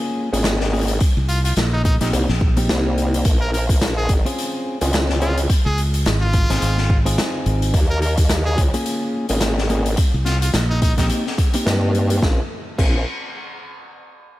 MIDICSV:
0, 0, Header, 1, 6, 480
1, 0, Start_track
1, 0, Tempo, 560748
1, 865, Time_signature, 4, 2, 24, 8
1, 12326, End_track
2, 0, Start_track
2, 0, Title_t, "Trumpet"
2, 0, Program_c, 0, 56
2, 1103, Note_on_c, 0, 65, 91
2, 1192, Note_off_c, 0, 65, 0
2, 1239, Note_on_c, 0, 65, 77
2, 1306, Note_off_c, 0, 65, 0
2, 1480, Note_on_c, 0, 63, 93
2, 1563, Note_off_c, 0, 63, 0
2, 1579, Note_on_c, 0, 63, 91
2, 1670, Note_off_c, 0, 63, 0
2, 1721, Note_on_c, 0, 63, 75
2, 1788, Note_off_c, 0, 63, 0
2, 2917, Note_on_c, 0, 70, 90
2, 2986, Note_off_c, 0, 70, 0
2, 3023, Note_on_c, 0, 70, 75
2, 3112, Note_off_c, 0, 70, 0
2, 3401, Note_on_c, 0, 68, 92
2, 3521, Note_off_c, 0, 68, 0
2, 4463, Note_on_c, 0, 65, 92
2, 4613, Note_off_c, 0, 65, 0
2, 4843, Note_on_c, 0, 68, 93
2, 4962, Note_off_c, 0, 68, 0
2, 5321, Note_on_c, 0, 65, 101
2, 5987, Note_off_c, 0, 65, 0
2, 6764, Note_on_c, 0, 70, 92
2, 6829, Note_off_c, 0, 70, 0
2, 6865, Note_on_c, 0, 70, 78
2, 6952, Note_off_c, 0, 70, 0
2, 7238, Note_on_c, 0, 68, 95
2, 7360, Note_off_c, 0, 68, 0
2, 8781, Note_on_c, 0, 65, 92
2, 8870, Note_off_c, 0, 65, 0
2, 8918, Note_on_c, 0, 65, 77
2, 8986, Note_off_c, 0, 65, 0
2, 9157, Note_on_c, 0, 63, 95
2, 9242, Note_off_c, 0, 63, 0
2, 9267, Note_on_c, 0, 63, 94
2, 9354, Note_off_c, 0, 63, 0
2, 9403, Note_on_c, 0, 63, 79
2, 9469, Note_off_c, 0, 63, 0
2, 12326, End_track
3, 0, Start_track
3, 0, Title_t, "Clean electric guitar"
3, 0, Program_c, 1, 27
3, 0, Note_on_c, 1, 58, 79
3, 0, Note_on_c, 1, 61, 72
3, 0, Note_on_c, 1, 65, 73
3, 0, Note_on_c, 1, 68, 89
3, 248, Note_off_c, 1, 58, 0
3, 248, Note_off_c, 1, 61, 0
3, 248, Note_off_c, 1, 65, 0
3, 248, Note_off_c, 1, 68, 0
3, 279, Note_on_c, 1, 58, 80
3, 281, Note_on_c, 1, 61, 73
3, 283, Note_on_c, 1, 65, 74
3, 285, Note_on_c, 1, 68, 86
3, 497, Note_off_c, 1, 58, 0
3, 497, Note_off_c, 1, 61, 0
3, 497, Note_off_c, 1, 65, 0
3, 497, Note_off_c, 1, 68, 0
3, 624, Note_on_c, 1, 58, 73
3, 625, Note_on_c, 1, 61, 66
3, 626, Note_on_c, 1, 65, 69
3, 627, Note_on_c, 1, 68, 82
3, 776, Note_off_c, 1, 58, 0
3, 776, Note_off_c, 1, 61, 0
3, 776, Note_off_c, 1, 65, 0
3, 776, Note_off_c, 1, 68, 0
3, 1720, Note_on_c, 1, 58, 92
3, 1723, Note_on_c, 1, 60, 84
3, 1725, Note_on_c, 1, 63, 84
3, 1729, Note_on_c, 1, 67, 102
3, 1937, Note_off_c, 1, 58, 0
3, 1937, Note_off_c, 1, 63, 0
3, 1937, Note_off_c, 1, 67, 0
3, 1938, Note_off_c, 1, 60, 0
3, 2199, Note_on_c, 1, 58, 99
3, 2200, Note_on_c, 1, 60, 90
3, 2204, Note_on_c, 1, 63, 90
3, 2210, Note_on_c, 1, 67, 111
3, 2772, Note_off_c, 1, 60, 0
3, 2772, Note_off_c, 1, 63, 0
3, 2772, Note_off_c, 1, 67, 0
3, 2773, Note_off_c, 1, 58, 0
3, 3641, Note_on_c, 1, 60, 78
3, 3644, Note_on_c, 1, 61, 71
3, 3647, Note_on_c, 1, 65, 70
3, 3650, Note_on_c, 1, 68, 86
3, 4090, Note_off_c, 1, 60, 0
3, 4090, Note_off_c, 1, 61, 0
3, 4090, Note_off_c, 1, 65, 0
3, 4090, Note_off_c, 1, 68, 0
3, 4123, Note_on_c, 1, 60, 79
3, 4123, Note_on_c, 1, 61, 71
3, 4125, Note_on_c, 1, 65, 73
3, 4128, Note_on_c, 1, 68, 91
3, 4338, Note_off_c, 1, 60, 0
3, 4338, Note_off_c, 1, 61, 0
3, 4338, Note_off_c, 1, 65, 0
3, 4339, Note_off_c, 1, 68, 0
3, 4467, Note_on_c, 1, 60, 73
3, 4469, Note_on_c, 1, 61, 67
3, 4470, Note_on_c, 1, 65, 68
3, 4473, Note_on_c, 1, 68, 80
3, 4618, Note_off_c, 1, 60, 0
3, 4618, Note_off_c, 1, 61, 0
3, 4618, Note_off_c, 1, 65, 0
3, 4618, Note_off_c, 1, 68, 0
3, 5564, Note_on_c, 1, 60, 94
3, 5564, Note_on_c, 1, 63, 85
3, 5566, Note_on_c, 1, 65, 86
3, 5568, Note_on_c, 1, 68, 101
3, 5778, Note_off_c, 1, 63, 0
3, 5778, Note_off_c, 1, 65, 0
3, 5779, Note_off_c, 1, 60, 0
3, 5779, Note_off_c, 1, 68, 0
3, 6040, Note_on_c, 1, 60, 103
3, 6042, Note_on_c, 1, 63, 91
3, 6045, Note_on_c, 1, 68, 112
3, 6049, Note_on_c, 1, 65, 91
3, 6613, Note_off_c, 1, 60, 0
3, 6613, Note_off_c, 1, 63, 0
3, 6613, Note_off_c, 1, 65, 0
3, 6613, Note_off_c, 1, 68, 0
3, 7479, Note_on_c, 1, 58, 80
3, 7481, Note_on_c, 1, 61, 70
3, 7481, Note_on_c, 1, 65, 72
3, 7482, Note_on_c, 1, 68, 88
3, 7927, Note_off_c, 1, 68, 0
3, 7928, Note_off_c, 1, 58, 0
3, 7928, Note_off_c, 1, 65, 0
3, 7929, Note_off_c, 1, 61, 0
3, 7959, Note_on_c, 1, 58, 81
3, 7959, Note_on_c, 1, 61, 73
3, 7960, Note_on_c, 1, 65, 74
3, 7961, Note_on_c, 1, 68, 89
3, 8175, Note_off_c, 1, 65, 0
3, 8176, Note_off_c, 1, 58, 0
3, 8176, Note_off_c, 1, 61, 0
3, 8176, Note_off_c, 1, 68, 0
3, 8300, Note_on_c, 1, 58, 77
3, 8305, Note_on_c, 1, 61, 68
3, 8308, Note_on_c, 1, 65, 70
3, 8310, Note_on_c, 1, 68, 83
3, 8455, Note_off_c, 1, 58, 0
3, 8455, Note_off_c, 1, 61, 0
3, 8455, Note_off_c, 1, 65, 0
3, 8455, Note_off_c, 1, 68, 0
3, 9399, Note_on_c, 1, 58, 93
3, 9402, Note_on_c, 1, 60, 86
3, 9406, Note_on_c, 1, 63, 83
3, 9408, Note_on_c, 1, 67, 100
3, 9617, Note_off_c, 1, 58, 0
3, 9617, Note_off_c, 1, 60, 0
3, 9617, Note_off_c, 1, 63, 0
3, 9617, Note_off_c, 1, 67, 0
3, 9879, Note_on_c, 1, 58, 100
3, 9881, Note_on_c, 1, 60, 92
3, 9885, Note_on_c, 1, 63, 91
3, 9889, Note_on_c, 1, 67, 110
3, 10452, Note_off_c, 1, 60, 0
3, 10452, Note_off_c, 1, 63, 0
3, 10453, Note_off_c, 1, 58, 0
3, 10453, Note_off_c, 1, 67, 0
3, 10465, Note_on_c, 1, 60, 85
3, 10466, Note_on_c, 1, 61, 78
3, 10467, Note_on_c, 1, 65, 78
3, 10468, Note_on_c, 1, 68, 96
3, 10611, Note_off_c, 1, 65, 0
3, 10612, Note_off_c, 1, 60, 0
3, 10612, Note_off_c, 1, 61, 0
3, 10612, Note_off_c, 1, 68, 0
3, 10947, Note_on_c, 1, 60, 87
3, 10949, Note_on_c, 1, 61, 78
3, 10949, Note_on_c, 1, 68, 95
3, 10952, Note_on_c, 1, 65, 79
3, 11131, Note_off_c, 1, 65, 0
3, 11131, Note_off_c, 1, 68, 0
3, 11132, Note_off_c, 1, 60, 0
3, 11132, Note_off_c, 1, 61, 0
3, 12326, End_track
4, 0, Start_track
4, 0, Title_t, "Wobble bass"
4, 0, Program_c, 2, 39
4, 279, Note_on_c, 2, 32, 96
4, 847, Note_off_c, 2, 32, 0
4, 1825, Note_on_c, 2, 36, 104
4, 1940, Note_off_c, 2, 36, 0
4, 2306, Note_on_c, 2, 36, 100
4, 2769, Note_off_c, 2, 36, 0
4, 2785, Note_on_c, 2, 34, 99
4, 3488, Note_off_c, 2, 34, 0
4, 3503, Note_on_c, 2, 32, 96
4, 3619, Note_off_c, 2, 32, 0
4, 4120, Note_on_c, 2, 37, 101
4, 4688, Note_off_c, 2, 37, 0
4, 6622, Note_on_c, 2, 39, 102
4, 7327, Note_off_c, 2, 39, 0
4, 7342, Note_on_c, 2, 37, 94
4, 7458, Note_off_c, 2, 37, 0
4, 7957, Note_on_c, 2, 32, 101
4, 8526, Note_off_c, 2, 32, 0
4, 9981, Note_on_c, 2, 43, 102
4, 10447, Note_off_c, 2, 43, 0
4, 10463, Note_on_c, 2, 34, 97
4, 10611, Note_off_c, 2, 34, 0
4, 10943, Note_on_c, 2, 34, 100
4, 11167, Note_off_c, 2, 34, 0
4, 12326, End_track
5, 0, Start_track
5, 0, Title_t, "Fingered electric bass"
5, 0, Program_c, 3, 33
5, 1002, Note_on_c, 3, 36, 93
5, 1329, Note_off_c, 3, 36, 0
5, 1342, Note_on_c, 3, 34, 96
5, 1698, Note_off_c, 3, 34, 0
5, 1722, Note_on_c, 3, 34, 94
5, 1809, Note_off_c, 3, 34, 0
5, 1963, Note_on_c, 3, 34, 98
5, 2289, Note_off_c, 3, 34, 0
5, 4845, Note_on_c, 3, 37, 96
5, 5170, Note_off_c, 3, 37, 0
5, 5189, Note_on_c, 3, 32, 99
5, 5542, Note_off_c, 3, 32, 0
5, 5567, Note_on_c, 3, 32, 98
5, 5651, Note_off_c, 3, 32, 0
5, 5670, Note_on_c, 3, 32, 97
5, 6131, Note_off_c, 3, 32, 0
5, 6387, Note_on_c, 3, 32, 95
5, 6610, Note_off_c, 3, 32, 0
5, 8682, Note_on_c, 3, 36, 96
5, 9009, Note_off_c, 3, 36, 0
5, 9025, Note_on_c, 3, 34, 99
5, 9380, Note_off_c, 3, 34, 0
5, 9398, Note_on_c, 3, 34, 97
5, 9487, Note_off_c, 3, 34, 0
5, 12326, End_track
6, 0, Start_track
6, 0, Title_t, "Drums"
6, 287, Note_on_c, 9, 42, 66
6, 373, Note_off_c, 9, 42, 0
6, 378, Note_on_c, 9, 38, 117
6, 382, Note_on_c, 9, 42, 79
6, 464, Note_off_c, 9, 38, 0
6, 468, Note_off_c, 9, 42, 0
6, 517, Note_on_c, 9, 40, 51
6, 603, Note_off_c, 9, 40, 0
6, 630, Note_on_c, 9, 42, 25
6, 653, Note_off_c, 9, 42, 0
6, 653, Note_on_c, 9, 42, 31
6, 675, Note_off_c, 9, 42, 0
6, 675, Note_on_c, 9, 42, 34
6, 696, Note_off_c, 9, 42, 0
6, 696, Note_on_c, 9, 42, 39
6, 707, Note_off_c, 9, 42, 0
6, 707, Note_on_c, 9, 42, 44
6, 742, Note_off_c, 9, 42, 0
6, 742, Note_on_c, 9, 42, 47
6, 753, Note_off_c, 9, 42, 0
6, 753, Note_on_c, 9, 42, 64
6, 839, Note_off_c, 9, 42, 0
6, 858, Note_on_c, 9, 42, 71
6, 863, Note_on_c, 9, 36, 127
6, 944, Note_off_c, 9, 42, 0
6, 949, Note_off_c, 9, 36, 0
6, 1100, Note_on_c, 9, 42, 55
6, 1186, Note_off_c, 9, 42, 0
6, 1239, Note_on_c, 9, 42, 71
6, 1325, Note_off_c, 9, 42, 0
6, 1339, Note_on_c, 9, 42, 69
6, 1348, Note_on_c, 9, 38, 112
6, 1424, Note_off_c, 9, 42, 0
6, 1434, Note_off_c, 9, 38, 0
6, 1583, Note_on_c, 9, 42, 68
6, 1584, Note_on_c, 9, 36, 113
6, 1668, Note_off_c, 9, 42, 0
6, 1670, Note_off_c, 9, 36, 0
6, 1718, Note_on_c, 9, 40, 35
6, 1718, Note_on_c, 9, 42, 66
6, 1804, Note_off_c, 9, 40, 0
6, 1804, Note_off_c, 9, 42, 0
6, 1826, Note_on_c, 9, 42, 83
6, 1912, Note_off_c, 9, 42, 0
6, 1957, Note_on_c, 9, 40, 40
6, 2043, Note_off_c, 9, 40, 0
6, 2064, Note_on_c, 9, 36, 110
6, 2150, Note_off_c, 9, 36, 0
6, 2198, Note_on_c, 9, 42, 59
6, 2283, Note_off_c, 9, 42, 0
6, 2306, Note_on_c, 9, 38, 122
6, 2311, Note_on_c, 9, 42, 81
6, 2392, Note_off_c, 9, 38, 0
6, 2397, Note_off_c, 9, 42, 0
6, 2549, Note_on_c, 9, 42, 55
6, 2634, Note_off_c, 9, 42, 0
6, 2689, Note_on_c, 9, 42, 69
6, 2775, Note_off_c, 9, 42, 0
6, 2781, Note_on_c, 9, 42, 79
6, 2784, Note_on_c, 9, 36, 124
6, 2866, Note_off_c, 9, 42, 0
6, 2870, Note_off_c, 9, 36, 0
6, 3030, Note_on_c, 9, 42, 52
6, 3115, Note_off_c, 9, 42, 0
6, 3161, Note_on_c, 9, 36, 110
6, 3165, Note_on_c, 9, 42, 68
6, 3247, Note_off_c, 9, 36, 0
6, 3251, Note_off_c, 9, 42, 0
6, 3266, Note_on_c, 9, 38, 118
6, 3266, Note_on_c, 9, 42, 80
6, 3351, Note_off_c, 9, 38, 0
6, 3351, Note_off_c, 9, 42, 0
6, 3501, Note_on_c, 9, 42, 69
6, 3504, Note_on_c, 9, 36, 105
6, 3586, Note_off_c, 9, 42, 0
6, 3590, Note_off_c, 9, 36, 0
6, 3648, Note_on_c, 9, 42, 66
6, 3734, Note_off_c, 9, 42, 0
6, 3753, Note_on_c, 9, 42, 79
6, 3839, Note_off_c, 9, 42, 0
6, 4118, Note_on_c, 9, 42, 61
6, 4204, Note_off_c, 9, 42, 0
6, 4219, Note_on_c, 9, 42, 78
6, 4231, Note_on_c, 9, 38, 126
6, 4305, Note_off_c, 9, 42, 0
6, 4316, Note_off_c, 9, 38, 0
6, 4360, Note_on_c, 9, 40, 53
6, 4446, Note_off_c, 9, 40, 0
6, 4464, Note_on_c, 9, 42, 54
6, 4550, Note_off_c, 9, 42, 0
6, 4600, Note_on_c, 9, 42, 67
6, 4686, Note_off_c, 9, 42, 0
6, 4704, Note_on_c, 9, 42, 81
6, 4705, Note_on_c, 9, 36, 117
6, 4790, Note_off_c, 9, 42, 0
6, 4791, Note_off_c, 9, 36, 0
6, 4946, Note_on_c, 9, 42, 57
6, 5032, Note_off_c, 9, 42, 0
6, 5082, Note_on_c, 9, 42, 66
6, 5168, Note_off_c, 9, 42, 0
6, 5185, Note_on_c, 9, 42, 80
6, 5190, Note_on_c, 9, 38, 119
6, 5270, Note_off_c, 9, 42, 0
6, 5276, Note_off_c, 9, 38, 0
6, 5421, Note_on_c, 9, 42, 70
6, 5425, Note_on_c, 9, 36, 104
6, 5506, Note_off_c, 9, 42, 0
6, 5510, Note_off_c, 9, 36, 0
6, 5565, Note_on_c, 9, 40, 38
6, 5565, Note_on_c, 9, 42, 67
6, 5651, Note_off_c, 9, 40, 0
6, 5651, Note_off_c, 9, 42, 0
6, 5665, Note_on_c, 9, 42, 68
6, 5751, Note_off_c, 9, 42, 0
6, 5801, Note_on_c, 9, 40, 37
6, 5887, Note_off_c, 9, 40, 0
6, 5905, Note_on_c, 9, 36, 105
6, 5990, Note_off_c, 9, 36, 0
6, 6045, Note_on_c, 9, 42, 67
6, 6130, Note_off_c, 9, 42, 0
6, 6148, Note_on_c, 9, 38, 112
6, 6148, Note_on_c, 9, 42, 78
6, 6234, Note_off_c, 9, 38, 0
6, 6234, Note_off_c, 9, 42, 0
6, 6385, Note_on_c, 9, 42, 55
6, 6471, Note_off_c, 9, 42, 0
6, 6524, Note_on_c, 9, 42, 62
6, 6609, Note_off_c, 9, 42, 0
6, 6624, Note_on_c, 9, 36, 118
6, 6624, Note_on_c, 9, 42, 77
6, 6709, Note_off_c, 9, 42, 0
6, 6710, Note_off_c, 9, 36, 0
6, 6865, Note_on_c, 9, 42, 50
6, 6950, Note_off_c, 9, 42, 0
6, 6997, Note_on_c, 9, 42, 62
6, 7001, Note_on_c, 9, 36, 104
6, 7083, Note_off_c, 9, 42, 0
6, 7086, Note_off_c, 9, 36, 0
6, 7099, Note_on_c, 9, 42, 82
6, 7101, Note_on_c, 9, 38, 120
6, 7185, Note_off_c, 9, 42, 0
6, 7187, Note_off_c, 9, 38, 0
6, 7342, Note_on_c, 9, 42, 78
6, 7344, Note_on_c, 9, 36, 101
6, 7428, Note_off_c, 9, 42, 0
6, 7429, Note_off_c, 9, 36, 0
6, 7480, Note_on_c, 9, 42, 67
6, 7565, Note_off_c, 9, 42, 0
6, 7582, Note_on_c, 9, 42, 69
6, 7667, Note_off_c, 9, 42, 0
6, 7951, Note_on_c, 9, 42, 70
6, 8036, Note_off_c, 9, 42, 0
6, 8051, Note_on_c, 9, 42, 82
6, 8054, Note_on_c, 9, 38, 110
6, 8136, Note_off_c, 9, 42, 0
6, 8140, Note_off_c, 9, 38, 0
6, 8202, Note_on_c, 9, 40, 52
6, 8288, Note_off_c, 9, 40, 0
6, 8300, Note_on_c, 9, 42, 50
6, 8386, Note_off_c, 9, 42, 0
6, 8437, Note_on_c, 9, 42, 61
6, 8523, Note_off_c, 9, 42, 0
6, 8534, Note_on_c, 9, 42, 81
6, 8542, Note_on_c, 9, 36, 120
6, 8620, Note_off_c, 9, 42, 0
6, 8627, Note_off_c, 9, 36, 0
6, 8778, Note_on_c, 9, 40, 36
6, 8781, Note_on_c, 9, 42, 51
6, 8864, Note_off_c, 9, 40, 0
6, 8867, Note_off_c, 9, 42, 0
6, 8919, Note_on_c, 9, 42, 69
6, 9005, Note_off_c, 9, 42, 0
6, 9019, Note_on_c, 9, 38, 107
6, 9020, Note_on_c, 9, 42, 84
6, 9105, Note_off_c, 9, 38, 0
6, 9105, Note_off_c, 9, 42, 0
6, 9260, Note_on_c, 9, 42, 72
6, 9262, Note_on_c, 9, 36, 102
6, 9346, Note_off_c, 9, 42, 0
6, 9348, Note_off_c, 9, 36, 0
6, 9396, Note_on_c, 9, 42, 62
6, 9397, Note_on_c, 9, 40, 41
6, 9399, Note_on_c, 9, 36, 60
6, 9482, Note_off_c, 9, 42, 0
6, 9483, Note_off_c, 9, 40, 0
6, 9485, Note_off_c, 9, 36, 0
6, 9497, Note_on_c, 9, 42, 80
6, 9583, Note_off_c, 9, 42, 0
6, 9645, Note_on_c, 9, 40, 38
6, 9731, Note_off_c, 9, 40, 0
6, 9743, Note_on_c, 9, 36, 106
6, 9744, Note_on_c, 9, 42, 60
6, 9829, Note_off_c, 9, 36, 0
6, 9830, Note_off_c, 9, 42, 0
6, 9874, Note_on_c, 9, 42, 71
6, 9960, Note_off_c, 9, 42, 0
6, 9987, Note_on_c, 9, 38, 116
6, 9988, Note_on_c, 9, 42, 78
6, 10073, Note_off_c, 9, 38, 0
6, 10074, Note_off_c, 9, 42, 0
6, 10226, Note_on_c, 9, 42, 52
6, 10312, Note_off_c, 9, 42, 0
6, 10358, Note_on_c, 9, 42, 69
6, 10444, Note_off_c, 9, 42, 0
6, 10464, Note_on_c, 9, 36, 115
6, 10465, Note_on_c, 9, 38, 85
6, 10550, Note_off_c, 9, 36, 0
6, 10551, Note_off_c, 9, 38, 0
6, 10944, Note_on_c, 9, 36, 114
6, 10946, Note_on_c, 9, 49, 85
6, 11030, Note_off_c, 9, 36, 0
6, 11032, Note_off_c, 9, 49, 0
6, 12326, End_track
0, 0, End_of_file